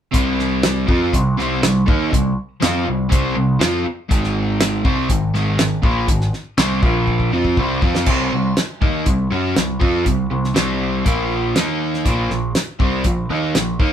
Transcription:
0.12 C2 C3 G3 C4, kick, closed hi-hat
0.39 snare
0.63 snare, closed hi-hat
0.87 F2 F3 C4 F4, kick
1.13 C2 C3 G3, kick, closed hi-hat
1.37 C2 C3 G3 C4, snare
1.62 C2 C3 G3, snare, closed hi-hat
1.86 D#2 D#3 A#3 D#4, kick
2.11 C2 C3 G3, kick, closed hi-hat
2.60 F2 F3 C4 F4, snare, closed hi-hat
2.85 C2 C3 G3
3.09 C2 C3 G3 C4, kick, closed hi-hat
3.35 C2 C3 G3
3.59 F2 F3 C4 F4, snare, closed hi-hat
3.85 muted picked electric bass stroke, muted overdriven electric guitar stroke
4.09 G#1 G#2 D#3 G#3, kick, closed hi-hat
4.24 snare
4.60 snare, closed hi-hat
4.84 C2 C3 G3 C4, kick
5.09 G#1 G#2 D#3, kick, closed hi-hat
5.34 G#1 G#2 D#3 G#3, snare
5.58 G#1 G#2 D#3, snare, closed hi-hat
5.83 A#1 A#2 F3 A#3, kick
6.08 G#1 G#2 D#3, kick, closed hi-hat
6.21 snare
6.33 snare
6.58 C2 C3 G3 C4, snare, closed hi-hat
6.83 A#1 A#2 F3 A#3, kick
7.07 kick
7.20 kick
7.32 F2 F3 C4 F4
7.45 kick
7.57 C2 C3 G3 C4, kick
7.82 F2 F3 C4 F4, kick
7.95 snare
8.06 C2 C3 G3 C4, kick, crash
8.32 C2 C3 G3
8.57 snare, closed hi-hat
8.81 D#2 D#3 A#3 D#4, kick
9.06 C2 C3 G3, kick, closed hi-hat
9.30 F#2 F#3 C#4 F#4
9.55 C2 C3 G3, snare, closed hi-hat
9.80 F2 F3 C4 F4, kick
10.06 C2 C3 G3, kick, closed hi-hat
10.31 C2 C3 G3
10.44 snare
10.54 C2 C3 G3 C4, snare, closed hi-hat
11.05 A#1 A#2 F3 A#3, kick, closed hi-hat
11.55 D#2 D#3 A#3 D#4, snare, closed hi-hat
11.94 snare
12.05 A#1 A#2 F3 A#3, kick, closed hi-hat
12.30 A#1 A#2 F3, snare
12.55 snare, closed hi-hat
12.79 C2 C3 G3 C4, kick
13.04 A#1 A#2 F3, kick, closed hi-hat
13.30 D#2 D#3 A#3 D#4
13.55 A#1 A#2 F3, snare, closed hi-hat
13.80 D#2 D#3 A#3 D#4, kick

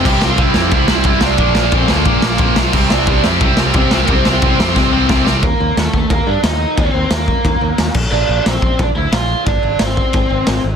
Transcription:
0.05 C2 C3 G3 C4 G4 G5, kick, crash, ride
0.21 C2 C3 G3 C4 F4 F5, snare
0.38 C2 C3 G3 C4 E4 E5, kick, ride
0.54 F2 C3 G3 C4, snare
0.71 C2 C3 G3 C4 E4, kick, ride
0.76 E5
0.88 C2 C3 G3 C4, snare
1.04 C2 C3 G3 C4, kick, ride
1.21 C2 C3 G3 C4 D4 D5, snare
1.38 A#1 A#2 F3 A#3, kick, ride
1.55 A#1 A#2 F3 A#3, snare
1.72 A#1 A#2 F3 A#3 C4 C5, kick, ride
1.88 D2 A#2 F3 A#3 A#4, snare
2.05 A#1 A#2 F3 A#3, kick, ride
2.21 A#1 A#2 F3 A#3, snare
2.38 A#1 A#2 F3 A#3, kick, ride
2.55 B1 A#2 F3 A#3, snare
2.73 C2 C3 G3 C4, kick, crash
2.90 C2 C3 G3 C4 D4 D5, snare
3.07 C2 C3 G3 C4, kick, ride
3.24 F2 C3 G3 C4 E4, snare
3.28 E5
3.41 C2 C3 G3 C4, kick, ride
3.57 C2 C3 G3 C4, snare
3.74 C2 C3 G3 C4, kick, ride
3.79 C5
3.91 C2 C3 G3 C4, snare
4.02 A#3 A#4
4.07 C2 C3 G3 C4, kick, ride
4.12 C4 C5
4.25 C2 C3 G3 C4, snare
4.32 C5
4.42 C2 C3 G3 C4, kick, ride
4.59 F2 C3 G3 C4, snare
4.75 C2 C3 G3 C4, kick, snare
4.92 C2 C3 G3 C4
5.08 C2 C3 G3 C4, kick, snare
5.25 C2 C3 G3 C4, snare
5.43 D#2 A#3 A#4, kick, ride
5.60 D#2
5.77 D#2 A3 A4, snare, ride
5.93 D#2, kick
6.10 D#2 A#3 A#4, kick, ride
6.27 G2 D4 D5
6.43 D#2 D#4 D#5, snare, ride
6.77 D#2 C4 C5, kick, ride
6.94 D#2
7.10 D#2 A#3 A#4, snare, ride
7.28 kick
7.45 D#2, kick, ride
7.61 D#2
7.78 D#2, snare, ride
7.94 A#1, kick, crash
8.12 A#1 D4 D5
8.29 A#1
8.46 A#1 C4 C5, snare, ride
8.62 A#1, kick
8.79 A#1 D4 D5, kick, ride
8.95 D2 E4 E5
9.12 A#1 F4 F5, snare, ride
9.46 G#1 D4 D5, kick, ride
9.63 G#1
9.79 G#1 C4 C5, snare, ride
9.97 kick
10.13 G#1, kick, ride
10.30 G#1
10.47 G#1, snare, ride
10.64 G#1

